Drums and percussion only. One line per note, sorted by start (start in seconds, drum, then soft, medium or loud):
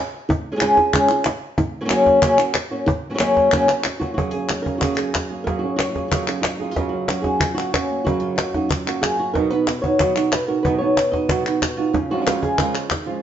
0.14 cajon slap soft
0.30 cajon bass medium
0.61 cajon slap medium
0.61 clap medium
0.77 cajon bass medium
0.77 cajon slap soft
0.94 cajon bass medium
0.94 clap medium
1.09 clap medium
1.25 cajon slap medium
1.25 clap medium
1.42 cajon slap soft
1.58 cajon bass medium
1.89 cajon slap medium
1.89 clap medium
2.06 cajon bass medium
2.06 cajon slap soft
2.22 cajon bass medium
2.22 clap medium
2.38 clap medium
2.54 cajon slap medium
2.54 clap medium
2.71 cajon slap soft
2.88 cajon bass medium
3.19 cajon slap medium
3.19 clap medium
3.37 cajon bass medium
3.37 cajon slap soft
3.52 cajon bass medium
3.52 clap medium
3.68 cajon slap medium
3.68 clap medium
3.83 cajon slap medium
3.83 clap medium
4.01 cajon bass medium
4.18 cajon bass medium
4.49 cajon slap medium
4.49 clap medium
4.66 cajon bass medium
4.81 cajon bass medium
4.81 clap medium
4.97 clap medium
5.14 cajon bass medium
5.14 cajon slap medium
5.14 clap medium
5.47 cajon bass medium
5.47 cajon slap soft
5.79 cajon slap medium
5.79 clap medium
5.96 cajon bass medium
5.96 cajon slap soft
6.12 cajon bass medium
6.12 clap medium
6.27 clap medium
6.44 cajon slap medium
6.44 clap medium
6.61 cajon slap soft
6.76 cajon bass medium
6.76 cajon slap soft
7.08 cajon slap medium
7.08 clap medium
7.24 cajon bass medium
7.24 cajon slap soft
7.40 cajon bass medium
7.40 clap medium
7.58 clap medium
7.74 cajon bass medium
7.74 cajon slap medium
7.74 clap medium
7.90 cajon slap soft
8.07 cajon bass medium
8.38 cajon slap medium
8.38 clap medium
8.54 cajon bass medium
8.54 cajon slap soft
8.71 cajon bass medium
8.71 clap medium
8.87 clap medium
9.03 cajon slap medium
9.03 clap medium
9.20 cajon slap soft
9.35 cajon bass medium
9.35 cajon slap soft
9.67 cajon slap medium
9.67 clap medium
9.84 cajon bass medium
10.00 cajon bass medium
10.00 clap medium
10.16 clap medium
10.32 cajon slap medium
10.32 clap medium
10.65 cajon bass medium
10.97 cajon slap medium
10.97 clap medium
11.13 cajon bass medium
11.13 cajon slap soft
11.29 cajon bass medium
11.29 clap medium
11.46 clap medium
11.62 cajon bass medium
11.62 cajon slap medium
11.62 clap medium
11.79 cajon slap soft
11.94 cajon bass medium
11.94 cajon slap soft
12.27 cajon slap medium
12.27 clap medium
12.43 cajon bass medium
12.58 cajon bass medium
12.58 clap medium
12.75 clap medium
12.90 cajon bass medium
12.90 cajon slap medium
12.90 clap medium